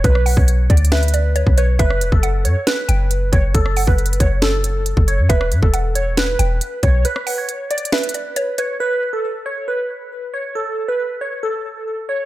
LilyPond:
<<
  \new Staff \with { instrumentName = "Synth pluck" } { \time 4/4 \key fis \phrygian \tempo 4 = 137 r8 fis''8 r4 e''8 d''8 cis''8 b'8 | e''4 fis''4. g''8 r4 | r8 fis''8 r2. | e''4 fis''4. g''8 r4 |
r8 fis''8 r4 e''8 d''8 cis''8 b'8 | r1 | r1 | }
  \new Staff \with { instrumentName = "Synth keys" } { \time 4/4 \key fis \phrygian b'8. cis''8. d''8 b'4. cis''8 | b'8. a'8. cis''8 b'4. cis''8 | a'8. b'8. cis''8 a'4. cis''8 | b'8. a'8. cis''8 b'4. cis''8 |
b'8. cis''8. d''8 b'4. cis''8 | b'8. a'8. cis''8 b'4. cis''8 | a'8. b'8. cis''8 a'4. cis''8 | }
  \new Staff \with { instrumentName = "808-style bass" } { \clef bass \time 4/4 \key fis \phrygian b,,8. b,,8. d,4.~ d,16 b,,8. | fis,,8 e,,16 fis,,8. fis,16 r8. fis,,4 fis,,8 | fis,,8. fis,,8. fis,,4.~ fis,,16 fis,,8 fis,16 | e,,8 g,16 e,,4.~ e,,16 e,,8 r8 b,,8 |
r1 | r1 | r1 | }
  \new DrumStaff \with { instrumentName = "Drums" } \drummode { \time 4/4 <hh bd>16 ss16 hho16 bd16 \tuplet 3/2 { hh16 r16 r16 <hh bd>16 hh16 hh16 } <hh sn>32 hh32 hh32 hh32 hh8 hh16 bd16 hh8 | <hh bd>16 ss16 hh16 bd16 hh8 hh8 <hh sn>8 hh8 hh8 <hh bd>8 | <hh bd>16 ss16 hho16 bd16 \tuplet 3/2 { hh16 hh16 hh16 <hh bd>16 r16 r16 } <hh sn>8 hh8 hh16 bd16 hh8 | <hh bd>16 ss16 hh16 bd16 hh8 hh8 <hh sn>8 hh8 hh8 <hh bd>8 |
hh16 ss16 hho8 \tuplet 3/2 { hh16 r16 r16 hh16 hh16 hh16 } <hh sn>32 hh32 hh32 hh32 hh8 hh8 hh8 | r4 r4 r4 r4 | r4 r4 r4 r4 | }
>>